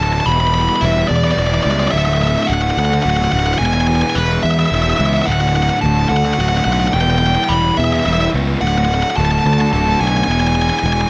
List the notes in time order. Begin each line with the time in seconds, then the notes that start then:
Already playing: A2
0.00 D1 D3 A3 F#4 A5
0.13 A5
0.20 A5
0.25 E1 E2 B2 E3 G3 B3 E4 B5
0.32 B5
0.40 E3 G3 B3 E4 B5
0.47 B5
0.53 E3 G3 B3 E4 B5
0.62 B5
0.69 B5
0.76 B5
0.81 E1 E2 B2 E3 G3 B3 E4 E5
1.08 E2 D5, muted distorted electric guitar stroke
1.16 D5
1.24 E3 G3 B3 E4 D5
1.31 D5
1.38 E1 D5
1.47 D5
1.52 E3 G3 B3 E4 D5
1.63 C#2 E3 G3 D5
1.68 B3 E4 D5
1.80 D5
1.88 D5 E5
1.93 D1 D2 A2 D3 A3 F#4
1.98 E5
2.06 A3 F#4 E5
2.10 D3 E5
2.21 A2 D3 A3 F#4 E5
2.27 E5
2.35 E5
2.43 E5 F#5
2.48 D1 D2 A2 D3 A3 F#4
2.54 F#5
2.62 F#5
2.71 F#5
2.77 D2 F#5, muted distorted electric guitar stroke
2.85 F#5
2.90 D3 A3 F#4 F#5
3.03 D1 F#5
3.10 F#5
3.17 A3 F#4 F#5
3.22 D3 F#5
3.32 D1 A2 D3 A3 F#4 F#5
3.39 F#5
3.47 F#5
3.54 F#5
3.59 E1 E2 B2 E3 G#3 B3 G#5
3.63 E4 G#5
3.74 E3 G#3 B3 E4 G#5
3.81 G#5
3.87 E3 G#3 B3 G#5
3.91 E4
3.96 G#5
4.02 G#5
4.10 G#5
4.15 E1 E2 B2 E3 G#3 B3 B4
4.19 E4
4.43 E2 E5, muted distorted electric guitar stroke
4.51 E5
4.58 E3 G#3 B3 E4 E5
4.66 E5
4.72 E1 E5
4.83 B3 E4 E5
4.87 E3 G#3 E5
4.97 C#2 E3 G#3 B3 E5
5.02 E4
5.06 E5
5.14 E5
5.22 E5 F#5
5.26 D1 D2 A2 D3 A3 F#4
5.32 F#5
5.40 D3 A3 F#4 F#5
5.48 F#5
5.54 A2 D3 A3 F#4 F#5
5.63 F#5
5.70 F#5
5.81 D1 D2 A2 D3 A3 A5
5.86 F#4
6.09 D2 F#5, muted distorted electric guitar stroke
6.17 F#5
6.24 D3 A3 F#4 F#5
6.34 F#5
6.39 D1 F#5
6.49 F#4 F#5
6.54 D3 A3 F#5
6.65 B1 A2 D3 A3 F#5
6.70 F#4 F#5
6.80 F#5
6.88 F#5
6.94 E1 E2 B2 E3 G3 B3 E4 G5
7.01 G5
7.08 E3 G3 B3 E4 G5
7.18 E3 G5
7.23 G3 B3 E4 G5
7.35 G5
7.44 G5
7.49 E1 E2 B2 E3 G3 B3 B5
7.53 E4
7.77 E2 E5, muted distorted electric guitar stroke
7.84 E5
7.91 E3 G3 B3 E4 E5
8.00 E5
8.06 E1 E5
8.13 E5
8.19 E3 G3 B3 E4 E5
8.33 C#2 E3 G3 B3 E4
8.61 D1 D2 A2 D3 A3 F#4 F#5
8.68 F#5
8.75 D3 A3 F#4 F#5
8.85 A2 F#5
8.90 D3 A3 F#4
8.94 F#5
9.03 F#5
9.10 F#5
9.16 D1 D2 A2 D3 A3 F#4 A5
9.25 A5
9.31 A5
9.39 A5
9.45 D2 A5, muted distorted electric guitar stroke
9.53 A5
9.58 D3 A3 F#4 A5
9.73 D1 A5
9.86 D3 A3 F#4
10.00 B1 A2 D3 A3 F#4 G#5
10.08 G#5
10.17 G#5
10.24 E1 E2 B2 E3 G#5
10.29 G#3 B3 E4 G#5
10.40 E3 G#3 B3 E4 G#5
10.47 G#5
10.54 E3 G#3 B3 E4 G#5
10.62 G#5
10.70 G#5
10.79 E2 B2 G#5
10.83 E1 E3 G#3 B3 E4 G#5
10.93 G#5
11.01 G#5